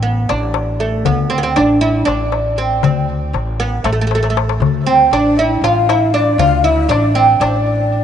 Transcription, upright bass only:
0, 0, Header, 1, 2, 480
1, 0, Start_track
1, 0, Tempo, 506329
1, 1010, Time_signature, 7, 3, 24, 8
1, 7621, End_track
2, 0, Start_track
2, 0, Title_t, "Upright bass"
2, 0, Program_c, 0, 32
2, 0, Note_on_c, 0, 33, 83
2, 248, Note_off_c, 0, 33, 0
2, 281, Note_on_c, 0, 33, 86
2, 967, Note_off_c, 0, 33, 0
2, 1012, Note_on_c, 0, 38, 93
2, 1453, Note_off_c, 0, 38, 0
2, 1492, Note_on_c, 0, 33, 83
2, 1933, Note_off_c, 0, 33, 0
2, 1966, Note_on_c, 0, 33, 75
2, 2650, Note_off_c, 0, 33, 0
2, 2686, Note_on_c, 0, 38, 85
2, 3130, Note_off_c, 0, 38, 0
2, 3160, Note_on_c, 0, 33, 85
2, 3607, Note_off_c, 0, 33, 0
2, 3641, Note_on_c, 0, 33, 73
2, 4327, Note_off_c, 0, 33, 0
2, 4362, Note_on_c, 0, 38, 87
2, 4808, Note_off_c, 0, 38, 0
2, 4846, Note_on_c, 0, 33, 79
2, 5290, Note_off_c, 0, 33, 0
2, 5322, Note_on_c, 0, 33, 76
2, 6008, Note_off_c, 0, 33, 0
2, 6048, Note_on_c, 0, 38, 92
2, 6491, Note_off_c, 0, 38, 0
2, 6527, Note_on_c, 0, 33, 92
2, 6970, Note_off_c, 0, 33, 0
2, 7014, Note_on_c, 0, 33, 86
2, 7621, Note_off_c, 0, 33, 0
2, 7621, End_track
0, 0, End_of_file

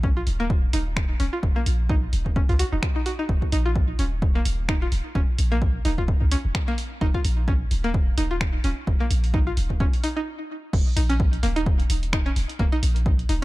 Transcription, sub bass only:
0, 0, Header, 1, 2, 480
1, 0, Start_track
1, 0, Tempo, 465116
1, 1477, Time_signature, 4, 2, 24, 8
1, 13873, End_track
2, 0, Start_track
2, 0, Title_t, "Sub bass"
2, 0, Program_c, 0, 38
2, 0, Note_on_c, 0, 34, 78
2, 217, Note_off_c, 0, 34, 0
2, 277, Note_on_c, 0, 27, 87
2, 697, Note_off_c, 0, 27, 0
2, 757, Note_on_c, 0, 27, 77
2, 1178, Note_off_c, 0, 27, 0
2, 1238, Note_on_c, 0, 27, 85
2, 1325, Note_off_c, 0, 27, 0
2, 1476, Note_on_c, 0, 27, 95
2, 1564, Note_off_c, 0, 27, 0
2, 1717, Note_on_c, 0, 34, 79
2, 2137, Note_off_c, 0, 34, 0
2, 2197, Note_on_c, 0, 27, 88
2, 2496, Note_off_c, 0, 27, 0
2, 2572, Note_on_c, 0, 37, 73
2, 2716, Note_off_c, 0, 37, 0
2, 2812, Note_on_c, 0, 27, 81
2, 2880, Note_off_c, 0, 27, 0
2, 3396, Note_on_c, 0, 27, 101
2, 3484, Note_off_c, 0, 27, 0
2, 3637, Note_on_c, 0, 34, 78
2, 4058, Note_off_c, 0, 34, 0
2, 4116, Note_on_c, 0, 27, 86
2, 4537, Note_off_c, 0, 27, 0
2, 4596, Note_on_c, 0, 27, 84
2, 5017, Note_off_c, 0, 27, 0
2, 5077, Note_on_c, 0, 27, 86
2, 5164, Note_off_c, 0, 27, 0
2, 5317, Note_on_c, 0, 27, 98
2, 5404, Note_off_c, 0, 27, 0
2, 5558, Note_on_c, 0, 34, 80
2, 5978, Note_off_c, 0, 34, 0
2, 6038, Note_on_c, 0, 27, 90
2, 6336, Note_off_c, 0, 27, 0
2, 6413, Note_on_c, 0, 37, 77
2, 6557, Note_off_c, 0, 37, 0
2, 6654, Note_on_c, 0, 27, 84
2, 6721, Note_off_c, 0, 27, 0
2, 7237, Note_on_c, 0, 27, 93
2, 7324, Note_off_c, 0, 27, 0
2, 7479, Note_on_c, 0, 34, 76
2, 7899, Note_off_c, 0, 34, 0
2, 7958, Note_on_c, 0, 27, 86
2, 8378, Note_off_c, 0, 27, 0
2, 8437, Note_on_c, 0, 27, 81
2, 8858, Note_off_c, 0, 27, 0
2, 8918, Note_on_c, 0, 27, 91
2, 9005, Note_off_c, 0, 27, 0
2, 9157, Note_on_c, 0, 27, 99
2, 9244, Note_off_c, 0, 27, 0
2, 9398, Note_on_c, 0, 34, 83
2, 9818, Note_off_c, 0, 34, 0
2, 9877, Note_on_c, 0, 27, 89
2, 10176, Note_off_c, 0, 27, 0
2, 11077, Note_on_c, 0, 27, 97
2, 11164, Note_off_c, 0, 27, 0
2, 11317, Note_on_c, 0, 34, 85
2, 11737, Note_off_c, 0, 34, 0
2, 11796, Note_on_c, 0, 27, 85
2, 12217, Note_off_c, 0, 27, 0
2, 12278, Note_on_c, 0, 27, 86
2, 12698, Note_off_c, 0, 27, 0
2, 12758, Note_on_c, 0, 27, 88
2, 12845, Note_off_c, 0, 27, 0
2, 12997, Note_on_c, 0, 27, 100
2, 13085, Note_off_c, 0, 27, 0
2, 13238, Note_on_c, 0, 34, 81
2, 13658, Note_off_c, 0, 34, 0
2, 13716, Note_on_c, 0, 27, 93
2, 13873, Note_off_c, 0, 27, 0
2, 13873, End_track
0, 0, End_of_file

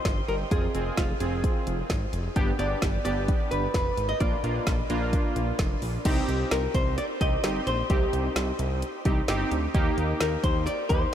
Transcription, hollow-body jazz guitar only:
0, 0, Header, 1, 2, 480
1, 0, Start_track
1, 0, Tempo, 461538
1, 536, Time_signature, 4, 2, 24, 8
1, 11586, End_track
2, 0, Start_track
2, 0, Title_t, "Hollow-body jazz guitar"
2, 0, Program_c, 0, 26
2, 0, Note_on_c, 0, 72, 98
2, 295, Note_on_c, 0, 70, 88
2, 310, Note_off_c, 0, 72, 0
2, 360, Note_off_c, 0, 70, 0
2, 534, Note_on_c, 0, 68, 92
2, 981, Note_off_c, 0, 68, 0
2, 1016, Note_on_c, 0, 65, 75
2, 2174, Note_off_c, 0, 65, 0
2, 2693, Note_on_c, 0, 74, 96
2, 3157, Note_off_c, 0, 74, 0
2, 3170, Note_on_c, 0, 74, 96
2, 3647, Note_off_c, 0, 74, 0
2, 3651, Note_on_c, 0, 71, 84
2, 3879, Note_off_c, 0, 71, 0
2, 3891, Note_on_c, 0, 71, 92
2, 4228, Note_off_c, 0, 71, 0
2, 4251, Note_on_c, 0, 75, 102
2, 4366, Note_off_c, 0, 75, 0
2, 4371, Note_on_c, 0, 74, 94
2, 4819, Note_off_c, 0, 74, 0
2, 6777, Note_on_c, 0, 70, 95
2, 7018, Note_on_c, 0, 72, 95
2, 7023, Note_off_c, 0, 70, 0
2, 7253, Note_off_c, 0, 72, 0
2, 7257, Note_on_c, 0, 74, 104
2, 7322, Note_off_c, 0, 74, 0
2, 7500, Note_on_c, 0, 75, 106
2, 7944, Note_off_c, 0, 75, 0
2, 7978, Note_on_c, 0, 72, 96
2, 8219, Note_on_c, 0, 67, 84
2, 8224, Note_off_c, 0, 72, 0
2, 9136, Note_off_c, 0, 67, 0
2, 10614, Note_on_c, 0, 70, 91
2, 10853, Note_on_c, 0, 72, 97
2, 10862, Note_off_c, 0, 70, 0
2, 11087, Note_off_c, 0, 72, 0
2, 11091, Note_on_c, 0, 74, 110
2, 11316, Note_off_c, 0, 74, 0
2, 11328, Note_on_c, 0, 72, 102
2, 11586, Note_off_c, 0, 72, 0
2, 11586, End_track
0, 0, End_of_file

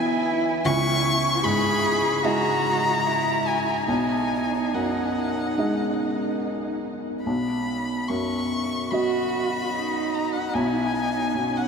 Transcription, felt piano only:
0, 0, Header, 1, 2, 480
1, 0, Start_track
1, 0, Key_signature, 5, "major"
1, 0, Tempo, 796813
1, 393, Time_signature, 4, 2, 24, 8
1, 1837, Tempo, 837989
1, 4717, Tempo, 817439
1, 6831, End_track
2, 0, Start_track
2, 0, Title_t, "Felt piano"
2, 0, Program_c, 0, 0
2, 0, Control_c, 0, 64, 127
2, 0, Note_on_c, 0, 35, 79
2, 0, Note_on_c, 0, 47, 57
2, 0, Note_on_c, 0, 52, 62
2, 0, Note_on_c, 0, 59, 55
2, 0, Note_on_c, 0, 71, 68
2, 366, Note_off_c, 0, 35, 0
2, 368, Note_off_c, 0, 59, 0
2, 370, Note_off_c, 0, 52, 0
2, 373, Note_off_c, 0, 71, 0
2, 391, Note_on_c, 0, 37, 85
2, 404, Control_c, 0, 64, 0
2, 407, Note_off_c, 0, 47, 0
2, 485, Control_c, 0, 64, 127
2, 869, Note_on_c, 0, 44, 66
2, 1350, Note_on_c, 0, 56, 53
2, 1351, Note_on_c, 0, 64, 55
2, 1353, Note_on_c, 0, 75, 58
2, 1639, Note_off_c, 0, 44, 0
2, 2290, Note_off_c, 0, 37, 0
2, 2291, Note_off_c, 0, 56, 0
2, 2291, Note_off_c, 0, 64, 0
2, 2292, Note_off_c, 0, 75, 0
2, 2313, Note_on_c, 0, 35, 62
2, 2325, Control_c, 0, 64, 0
2, 2418, Control_c, 0, 64, 127
2, 2806, Note_on_c, 0, 42, 40
2, 3284, Note_on_c, 0, 56, 40
2, 3287, Note_on_c, 0, 63, 35
2, 3290, Note_on_c, 0, 75, 42
2, 3568, Note_off_c, 0, 42, 0
2, 4217, Note_off_c, 0, 35, 0
2, 4219, Note_off_c, 0, 56, 0
2, 4221, Note_off_c, 0, 63, 0
2, 4222, Note_off_c, 0, 75, 0
2, 4250, Note_on_c, 0, 35, 55
2, 4252, Control_c, 0, 64, 0
2, 4358, Control_c, 0, 64, 127
2, 4728, Note_on_c, 0, 42, 43
2, 5211, Note_on_c, 0, 54, 42
2, 5212, Note_on_c, 0, 66, 43
2, 5219, Note_on_c, 0, 75, 46
2, 5499, Note_off_c, 0, 42, 0
2, 6146, Note_off_c, 0, 54, 0
2, 6147, Note_off_c, 0, 35, 0
2, 6147, Note_off_c, 0, 66, 0
2, 6151, Note_off_c, 0, 75, 0
2, 6167, Note_on_c, 0, 35, 62
2, 6175, Control_c, 0, 64, 0
2, 6286, Control_c, 0, 64, 127
2, 6637, Note_on_c, 0, 47, 47
2, 6831, Note_off_c, 0, 35, 0
2, 6831, Note_off_c, 0, 47, 0
2, 6831, End_track
0, 0, End_of_file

